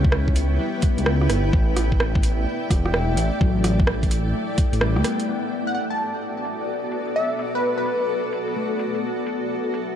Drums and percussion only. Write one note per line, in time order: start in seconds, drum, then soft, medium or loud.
0.04 kick medium
0.12 cross-stick loud
0.28 kick medium
0.36 closed hi-hat medium
0.82 kick loud
0.82 closed hi-hat medium
0.98 closed hi-hat soft
1.06 cross-stick medium
1.21 cross-stick soft
1.30 cross-stick medium
1.30 closed hi-hat soft
1.53 kick loud
1.77 cross-stick medium
1.77 closed hi-hat medium
1.92 kick medium
2.00 cross-stick loud
2.15 kick medium
2.23 closed hi-hat medium
2.70 kick loud
2.70 cross-stick medium
2.70 closed hi-hat medium
2.86 cross-stick medium
2.94 cross-stick medium
3.17 closed hi-hat medium
3.41 kick loud
3.64 cross-stick medium
3.64 closed hi-hat medium
3.80 kick loud
3.87 cross-stick loud
4.03 kick medium
4.03 closed hi-hat soft
4.11 closed hi-hat medium
4.58 kick loud
4.58 closed hi-hat medium
4.73 closed hi-hat soft
4.81 cross-stick loud
4.96 cross-stick medium
5.04 cross-stick medium
5.04 closed hi-hat medium
5.20 closed hi-hat soft
5.51 closed hi-hat soft
5.98 closed hi-hat soft
6.45 closed hi-hat soft
6.92 closed hi-hat medium
7.07 closed hi-hat soft
7.39 closed hi-hat medium
7.86 closed hi-hat soft
8.33 closed hi-hat medium
8.48 closed hi-hat soft
8.79 closed hi-hat medium
8.95 closed hi-hat soft
9.27 closed hi-hat soft
9.74 closed hi-hat soft